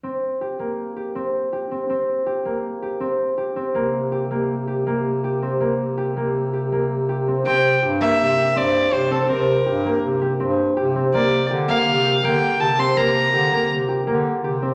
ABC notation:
X:1
M:5/4
L:1/8
Q:1/4=163
K:Gdor
V:1 name="Violin"
z8 z2 | z8 z2 | z8 z2 | z8 z2 |
g2 z e3 d2 c A | B4 z6 | d2 z f3 g2 a c' | b4 z6 |]
V:2 name="Harp"
C2 G B,2 G C2 G C | C2 G B,2 G C2 G C | B,2 G B,2 G B,2 G C | B,2 G B,2 G B,2 G C |
C2 G B,2 G C2 G C | C2 G B,2 G C2 G C | B,2 G B,2 G B,2 G C | B,2 G B,2 G B,2 G C |]
V:3 name="Bass clarinet" clef=bass
z8 z2 | z8 z2 | C,8- C,2- | C,8- C,2 |
C,2 G,,2 C,2 G,,2 C,2 | C,2 G,,2 C,2 G,,2 C,2 | C,2 D,2 C,2 D,2 C,2 | C,2 D,2 C,2 D,2 C,2 |]